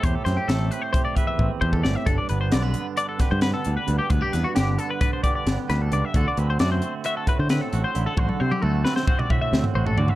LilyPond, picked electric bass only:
\new Staff \with { instrumentName = "Picked electric bass" } { \clef bass \time 9/8 \key g \major \tempo 4. = 89 e,16 r16 fis,16 r16 a,,8 r4. a,,16 r16 e,8 g,,16 r16 | g,,16 r16 g,,8 b,,8 r4 r16 g,8 r16 d,16 r16 d,16 r16 | d,16 r16 e,16 r16 g,,8 r4. g,,16 r16 d,8 des,16 r16 | d,16 r16 d,8 fis,8 r4 r16 d8 r16 a,,16 r16 a,,16 r16 |
a,,16 r16 c16 r16 d,8 r4. d,16 r16 a,,8 d,16 r16 | }